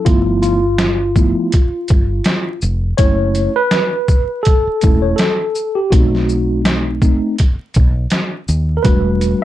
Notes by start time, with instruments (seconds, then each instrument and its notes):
0.05 fretless electric bass G1, tine electric piano F3 A3 B3 E4 F4, kick, closed hi-hat
0.42 tine electric piano F4, closed hi-hat, shaker
0.78 snare, closed hi-hat
1.16 tine electric piano F3 A3 B3 E4, kick, shaker
1.52 kick, closed hi-hat
1.88 fretless electric bass G1, kick, closed hi-hat, shaker
2.24 snare, closed hi-hat
2.62 fretless electric bass F1, shaker
2.97 fretless electric bass F#1, tine electric piano A3 C#4 E4 C#5, kick, closed hi-hat
3.35 closed hi-hat, shaker
3.56 tine electric piano B4
3.71 snare, closed hi-hat
4.08 kick, shaker
4.43 tine electric piano A4, kick, closed hi-hat
4.67 muted fretless electric bass stroke
4.81 fretless electric bass E1, tine electric piano A3 C#4 E4, kick, closed hi-hat, shaker
5.02 tine electric piano C#5
5.16 tine electric piano A4, snare, closed hi-hat
5.55 shaker
5.75 tine electric piano G4
5.90 fretless electric bass B1, tine electric piano A3 C4 D#4 F#4, kick, closed hi-hat
6.15 snare
6.29 shaker
6.65 snare, closed hi-hat
7.02 tine electric piano A3 C4 D#4, kick, shaker
7.38 kick, closed hi-hat
7.74 fretless electric bass B1, kick, closed hi-hat, shaker
8.10 snare, closed hi-hat
8.48 fretless electric bass D#2, shaker
8.77 tine electric piano A#4
8.83 fretless electric bass E1, tine electric piano G3 A3 D4 F#4 B4, kick, closed hi-hat
9.21 closed hi-hat, shaker